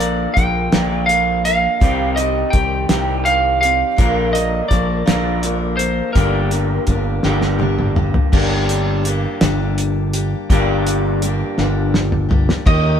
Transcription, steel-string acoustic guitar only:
0.00 0.35 A#3 soft
0.00 0.36 D4 soft
0.00 0.36 A#4 soft
0.35 0.72 F3 medium
0.35 0.72 A#3 medium
0.35 0.72 D4 medium
0.35 0.71 A#4 medium
0.72 1.10 A#2 medium
0.72 1.07 F3 medium
0.72 1.09 A#3 medium
0.72 1.09 D4 medium
0.72 1.09 A#4 medium
1.09 1.45 F3 soft
1.09 1.46 A#3 soft
1.09 1.46 D4 medium
1.09 1.44 A#4 medium
1.46 1.81 A#3 soft
1.46 1.82 D4 soft
1.46 1.82 A#4 soft
1.80 2.17 C3 medium
1.80 2.18 D#3 medium
1.80 2.18 C4 medium
1.80 2.17 D#4 medium
1.80 2.15 G4 medium
2.16 2.53 C4 soft
2.16 2.54 D#4 medium
2.16 2.53 G4 soft
2.53 2.90 D#3 medium
2.53 2.89 C4 medium
2.53 2.89 D#4 medium
2.53 2.88 G4 medium
2.89 3.27 C3 soft
2.89 3.24 D#3 soft
2.89 3.25 C4 medium
2.89 3.26 D#4 medium
2.89 3.26 G4 medium
3.25 3.62 D#3 medium
3.25 3.62 C4 medium
3.25 3.62 D#4 medium
3.25 3.60 G4 medium
3.61 3.98 C4 soft
3.61 3.98 D#4 soft
3.61 3.98 G4 soft
3.96 4.34 A#2 medium
3.96 4.35 F3 medium
3.96 4.35 A#3 medium
3.96 4.35 D4 medium
3.96 4.32 A#4 medium
4.34 4.68 A#3 soft
4.34 4.71 A#4 medium
4.68 5.06 F3 medium
4.68 5.06 A#3 medium
4.68 5.05 D4 medium
4.68 5.04 A#4 medium
5.06 5.44 A#2 medium
5.06 5.41 F3 medium
5.06 5.42 A#3 medium
5.06 5.43 D4 medium
5.06 5.43 A#4 medium
5.42 5.79 F3 medium
5.42 5.80 A#3 medium
5.42 5.79 D4 medium
5.42 5.77 A#4 medium
5.78 6.15 A#3 soft
5.78 6.15 D4 soft
5.78 6.15 A#4 soft
6.15 6.52 G2 medium
6.15 6.52 D3 medium
6.15 6.52 G3 medium
6.15 6.52 A#3 medium
6.15 6.51 D4 medium
6.15 6.50 G4 medium
6.51 6.86 G3 soft
6.51 6.87 A#3 soft
6.51 6.88 D4 soft
6.51 6.88 G4 medium
6.87 7.24 G3 medium
6.87 7.24 A#3 medium
6.87 7.23 D4 medium
6.87 7.23 G4 medium
7.25 7.62 G2 medium
7.25 7.61 D3 medium
7.25 7.57 G3 medium
7.25 7.59 A#3 medium
7.25 7.60 D4 medium
7.25 7.61 G4 medium
7.59 7.96 G3 medium
7.59 7.97 A#3 medium
7.59 7.95 D4 medium
7.59 7.95 G4 medium
7.96 8.32 G3 soft
7.96 8.32 A#3 soft
7.96 8.33 D4 medium
7.96 8.32 G4 medium
8.32 9.05 G2 medium
8.32 9.05 D3 medium
8.32 9.03 G3 medium
8.32 9.05 A#3 medium
8.32 9.05 D4 loud
8.32 9.07 G4 loud
9.04 9.41 G3 medium
9.04 9.41 A#3 medium
9.04 9.41 D4 medium
9.08 9.40 G4 medium
9.41 10.15 G2 medium
9.41 10.15 D3 medium
9.41 10.16 G3 medium
9.41 10.15 A#3 medium
9.41 10.14 D4 medium
9.41 10.13 G4 medium
10.13 10.50 G3 soft
10.13 10.50 A#3 soft
10.13 10.50 D4 medium
10.13 10.50 G4 medium
10.50 11.22 G2 medium
10.50 11.22 D3 medium
10.50 11.21 G3 medium
10.50 11.22 A#3 loud
10.50 11.23 D4 loud
10.50 11.23 G4 loud
11.22 11.58 G3 medium
11.22 11.58 A#3 medium
11.22 11.57 D4 medium
11.22 11.57 G4 medium
11.58 12.31 G2 medium
11.58 12.31 D3 medium
11.58 12.30 G3 medium
11.58 12.29 A#3 medium
11.58 12.28 D4 medium
11.58 12.27 G4 medium
12.29 12.65 G3 soft
12.29 12.65 A#3 medium
12.29 12.66 D4 medium
12.29 12.65 G4 medium
12.65 13.00 D#3 medium
12.65 13.00 A#3 medium
12.65 13.00 D#4 medium
12.65 13.00 G4 loud

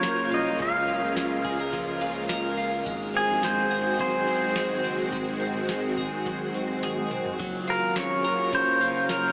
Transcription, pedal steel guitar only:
0.00 0.34 C#5 medium
0.34 0.59 D#5 medium
0.62 1.70 F5 loud
3.17 3.45 G#4 loud
3.44 3.99 C5 medium
4.01 6.79 C5 loud
7.70 7.98 A#4 loud
7.98 8.54 C#5 medium
8.55 9.10 C5 loud
9.11 9.32 A#4 loud

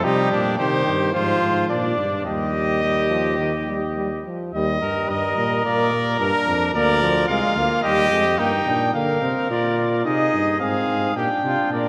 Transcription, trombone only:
0.04 0.58 G3 medium
0.59 1.17 D#3 medium
1.15 1.99 F3 medium
2.28 2.80 G3 medium
2.83 3.10 G3 medium
3.11 3.39 F3 medium
3.39 3.52 D#3 medium
3.68 3.81 G3 medium
3.97 4.10 G3 medium
4.27 4.54 F3 medium
4.55 4.80 G3 medium
4.83 5.64 G3 medium
5.65 5.92 A#3 medium
5.93 6.19 A#3 medium
6.20 6.73 D4 medium
6.76 7.02 A#3 medium
7.03 7.29 F3 medium
7.30 7.59 G#3 medium
7.58 7.84 A#3 medium
7.84 8.11 G3 medium
8.12 8.24 G#3 medium
8.39 8.51 A#3 medium
8.67 8.94 D4 medium
8.94 9.20 A#3 medium
9.22 9.49 C4 medium
9.51 10.05 F4 medium
10.05 10.59 D#4 medium
10.60 11.15 C4 medium
11.16 11.88 D4 medium

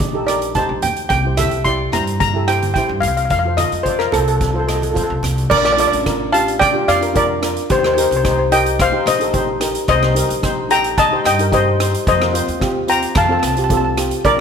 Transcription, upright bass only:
0.00 0.53 A#1 medium
0.69 0.81 A#1 medium
0.82 1.06 D2 medium
1.10 1.45 C2 loud
1.51 1.86 C2 medium
1.92 2.73 G2 loud
2.89 3.01 G2 loud
3.03 3.26 C2 medium
3.30 3.65 F2 loud
3.72 4.06 F2 medium
4.13 4.94 C2 medium
5.10 5.21 C2 loud
5.23 5.46 C2 medium
5.51 5.85 A#1 loud
5.92 6.72 A1 medium
6.88 7.56 F2 medium
7.70 8.04 D#2 loud
8.11 8.90 C2 medium
9.06 9.74 A#1 medium
9.88 10.23 C2 loud
10.29 11.09 A#1 medium
11.24 11.93 G2 medium
12.07 12.41 F2 loud
12.48 13.04 D#2 medium
13.15 13.38 F2 medium
13.43 14.11 C2 medium
14.24 14.40 A#1 medium

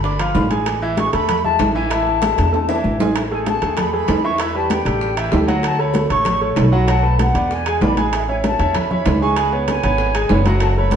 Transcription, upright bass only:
0.00 0.32 G1 medium
0.35 1.07 A1 loud
1.13 1.57 E2 medium
1.59 2.32 A1 medium
2.38 2.81 E2 medium
2.84 3.57 A1 medium
3.62 4.05 E2 medium
4.08 4.81 E2 medium
4.85 5.29 A1 medium
5.33 6.05 D2 medium
6.10 6.54 A1 medium
6.57 7.29 B1 medium
7.35 7.78 E2 loud
7.81 8.53 A1 medium
8.59 9.03 E2 medium
9.06 9.78 C#2 medium
9.84 10.27 G#1 medium
10.30 10.96 F#1 medium

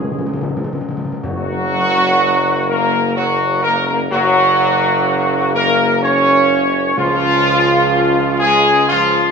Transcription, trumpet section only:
0.00 0.70 G#4 loud
1.24 2.64 F#4 loud
2.68 3.16 A#4 loud
3.16 3.60 F#4 loud
3.63 3.86 A#4 loud
3.87 3.98 A#4 medium
4.12 5.51 F#4 loud
5.55 5.99 A#4 loud
6.03 6.94 C#5 loud
6.98 8.36 F4 loud
8.40 8.85 G#4 loud
8.89 9.31 F4 loud

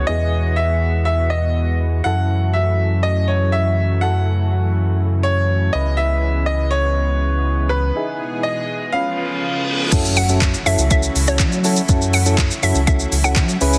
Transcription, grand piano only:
0.07 0.54 D#5 loud
0.56 1.03 E5 medium
1.05 1.32 E5 medium
1.30 1.77 D#5 medium
2.04 2.55 F#5 loud
2.53 3.00 E5 medium
3.03 3.29 D#5 medium
3.28 3.53 C#5 medium
3.52 4.03 E5 medium
4.01 4.96 F#5 medium
5.23 5.70 C#5 loud
5.73 5.99 D#5 medium
5.97 6.44 E5 loud
6.46 6.73 D#5 medium
6.71 7.73 C#5 loud
7.69 8.16 B4 medium
8.43 8.90 D#5 medium
8.92 9.63 F5 loud

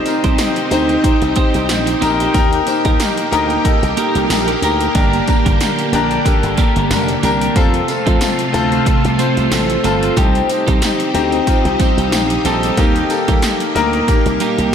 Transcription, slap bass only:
0.24 0.35 C2 medium
0.71 0.96 D2 medium
1.22 1.33 C2 medium
1.55 1.69 C2 medium
1.69 1.94 A#1 medium
2.02 2.26 A#1 loud
2.35 2.59 D#2 loud
2.85 2.96 D#2 loud
3.32 3.57 D2 loud
3.83 3.94 C2 medium
4.15 4.26 C2 medium
4.30 4.54 A#1 medium
4.62 4.87 D2 medium
4.95 5.20 G1 medium
5.46 5.57 G1 loud
5.92 6.17 A#1 loud
6.43 6.54 G1 medium
6.76 6.87 G1 loud
6.90 7.15 F1 medium
7.23 7.48 C2 loud
7.56 7.80 F2 loud
8.07 8.18 F2 loud
8.54 8.78 D2 medium
9.05 9.16 C2 loud
9.37 9.48 C2 medium
9.51 9.76 A1 loud
9.84 10.09 G1 medium
10.17 10.41 C2 loud
10.68 10.79 C2 medium
11.14 11.39 D2 medium
11.65 11.76 C2 medium
11.97 12.12 C2 medium
12.12 12.37 A#1 medium
12.45 12.69 A#1 loud
12.77 13.02 D#2 loud
13.28 13.39 D#2 loud
13.75 14.00 D2 medium
14.26 14.37 C2 medium
14.58 14.69 C2 medium

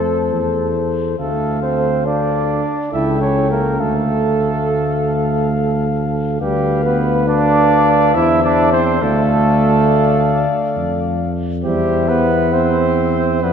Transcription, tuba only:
0.00 0.33 F2 soft
0.31 1.19 E2 soft
1.19 2.62 D2 soft
2.94 3.82 C#2 soft
3.80 6.40 D2 soft
6.41 8.16 D2 medium
8.15 9.02 E2 medium
9.02 10.46 D2 medium
10.76 11.66 F2 medium
11.64 13.44 E2 medium
13.43 13.53 F2 medium

